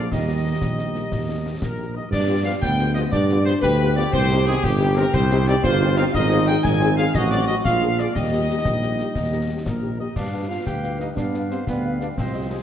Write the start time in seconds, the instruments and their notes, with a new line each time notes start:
Already playing: trumpet section D5, woodwind section D5
0.10 tuba D#2, euphonium D#3, trombone section G3, trumpet section D#5, woodwind section D#5, concert bass drum, snare, crash
0.28 french horn section A#3 D#4 G4
0.44 french horn section A#3 D#4 G4
0.61 tuba A#1, concert bass drum, snare
0.78 french horn section A#3 D#4 G4, snare
0.95 french horn section A#3 D#4 G4, snare
1.12 tuba D#2, concert bass drum, snare
1.28 french horn section A#3 D#4 G4
1.45 french horn section A#3 D#4 G4
1.62 tuba A#1, trumpet section A#4, woodwind section A#4, concert bass drum, snare
1.79 french horn section A#3 D#4 G4
1.95 french horn section A#3 D#4 G4, trumpet section D#5, woodwind section D#5
2.11 tuba G2, euphonium D4, trumpet section D5, woodwind section D5, concert bass drum, snare, crash
2.28 french horn section B3 F4 G4
2.44 trombone section F3 B3, french horn section B3 F4 G4, woodwind section F5, trumpet section F5
2.62 tuba D2, euphonium B3, trumpet section G5, woodwind section G5, concert bass drum, snare
2.79 french horn section B3 F4 G4, snare
2.95 trombone section F3 B3, french horn section B3 F4 G4, trumpet section D#5, woodwind section D#5, snare
3.11 tuba G2, euphonium D4, woodwind section D5, trumpet section D5, concert bass drum, snare
3.29 french horn section B3 F4 G4, snare
3.45 trombone section F3 B3, french horn section B3 F4 G4, woodwind section C5, trumpet section C5, snare
3.61 tuba D2, euphonium G4, woodwind section B4, trumpet section B4, concert bass drum, snare
3.81 french horn section B3 F4 G4
3.96 trombone section F3 B3, french horn section B3 F4 G4, trumpet section D5, woodwind section D5, snare
4.12 tuba C2, woodwind section C5, trumpet section C5, concert bass drum, snare, crash
4.32 french horn section C4 D#4 G4
4.46 trombone section D#3 C4, french horn section C4 D#4 G4, woodwind section G#4, trumpet section G#4
4.63 tuba G1, woodwind section G4, trumpet section G4, concert bass drum, snare
4.81 french horn section C4 D#4 G4, snare
4.97 trombone section D#3 C4, french horn section C4 D#4 G4, woodwind section A#4, trumpet section A#4, snare
5.14 tuba C2, woodwind section C5, trumpet section C5, concert bass drum, snare
5.30 french horn section C4 D#4 G4, snare
5.47 trombone section D#3 C4, french horn section C4 D#4 G4, woodwind section D5, trumpet section D5, snare
5.64 tuba G1, euphonium F4, woodwind section C5, trumpet section C5, concert bass drum, snare
5.80 french horn section C4 D#4 G4
5.97 trombone section D#3 C4, french horn section C4 D#4 G4, woodwind section F5, trumpet section F5, snare
6.14 tuba G#1, trombone section F3 C4, euphonium D#4, woodwind section D#5, trumpet section D#5, concert bass drum, snare, crash
6.31 french horn section C4 F4 G#4
6.48 french horn section C4 F4 G#4, woodwind section G5, trumpet section G5
6.63 tuba G#1, trombone section F3 C4, woodwind section G#5, trumpet section G#5, concert bass drum, snare
6.81 french horn section C4 F4 G#4, snare
6.97 french horn section C4 F4 G#4, woodwind section F5, trumpet section F5, snare
7.15 tuba A1, trombone section F#3 C4, euphonium F#4, woodwind section D#5, trumpet section D#5, concert bass drum, snare
7.31 french horn section C4 D#4 F#4, trumpet section D5, woodwind section D5, snare
7.48 french horn section C4 D#4 F#4, trumpet section D#5, woodwind section D#5, snare
7.65 tuba A#1, trombone section G#3 D4, euphonium F4, trumpet section F5, woodwind section F5, concert bass drum, snare
7.82 french horn section A#3 D4 G#4
7.99 french horn section A#3 D4 G#4, woodwind section D5, trumpet section D5, snare
8.15 tuba D#2, trombone section G3 D#4, euphonium G4, trumpet section D#5, woodwind section D#5, concert bass drum, snare, crash
8.32 french horn section A#3 D#4 G4
8.49 french horn section A#3 D#4 G4
8.65 tuba A#1, concert bass drum, snare
8.82 french horn section A#3 D#4 G4, snare
8.99 french horn section A#3 D#4 G4, snare
9.15 tuba D#2, concert bass drum, snare
9.32 french horn section A#3 D#4 G4
9.49 french horn section A#3 D#4 G4
9.65 tuba A#1, trombone section A#3, trumpet section A#4, concert bass drum, snare
9.82 french horn section A#3 D#4 G4
9.99 french horn section A#3 D#4 G4, trombone section D#4, trumpet section D#5
10.15 tuba G2, trombone section D4, woodwind section B4 F5, trumpet section D5, concert bass drum, snare, crash
10.34 french horn section G4 B4 F5
10.49 trombone section F4, french horn section G4 B4 F5, trumpet section F5
10.66 tuba D2, euphonium G3, trombone section G4, woodwind section B4 F5, trumpet section G5, concert bass drum, snare
10.83 french horn section G4 B4 F5, snare
10.99 trombone section D#4, french horn section G4 B4 F5, trumpet section D#5, snare
11.15 tuba G2, trombone section D4, woodwind section B4 F5, trumpet section D5, concert bass drum, snare
11.19 euphonium B3
11.34 french horn section G4 B4 F5, snare
11.50 trombone section C4, french horn section G4 B4 F5, trumpet section C5, snare
11.65 tuba D2, euphonium G3, trombone section B3, woodwind section B4 F5, trumpet section B4, concert bass drum, snare
11.85 french horn section G4 B4 F5
12.00 trombone section D4, french horn section G4 B4 F5, trumpet section D5, snare
12.16 tuba C2, euphonium F3, trombone section C4, trumpet section C5, woodwind section C5 D#5, concert bass drum, snare
12.34 french horn section G4 C5 D#5
12.49 trombone section G#3, french horn section G4 C5 D#5, trumpet section G#4